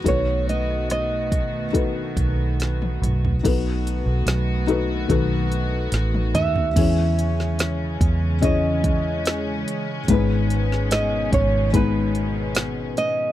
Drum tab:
CC |----------------|x---------------|x---------------|----------------|
HH |x-x-x-x-x-x-x-x-|x-x-x-x-x-x-x-x-|x-x-x-x-x-x-x-x-|x-x-x-x-x-x-x-x-|
SD |---rr-------o---|----o-------o---|---oo-------o---|---oo-------o---|
T1 |-------------o--|-------------o--|----------------|----------------|
T2 |--------------o-|--------------o-|----------------|----------------|
FT |---------------o|---------------o|----------------|----------------|
BD |o-----o-o-o-----|o-------o-------|o-----o-o-o-----|o-----o-o-------|